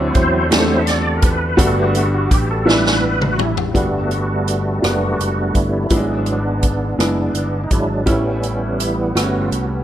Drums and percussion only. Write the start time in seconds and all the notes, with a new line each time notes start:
0.15 kick, closed hi-hat
0.52 snare, closed hi-hat
0.87 snare, closed hi-hat
1.22 kick, closed hi-hat
1.59 kick, closed hi-hat
1.95 closed hi-hat
2.31 kick, closed hi-hat
2.69 snare
2.86 snare
3.22 mid tom
3.39 mid tom
3.57 floor tom
3.75 kick, closed hi-hat
4.11 closed hi-hat
4.48 closed hi-hat
4.84 cross-stick, closed hi-hat
5.20 closed hi-hat
5.55 kick, closed hi-hat
5.90 kick, closed hi-hat
6.26 closed hi-hat
6.63 kick, closed hi-hat
7.00 cross-stick, closed hi-hat
7.35 closed hi-hat
7.71 kick, closed hi-hat
8.07 kick, closed hi-hat
8.43 closed hi-hat
8.80 closed hi-hat
9.17 cross-stick, closed hi-hat
9.52 closed hi-hat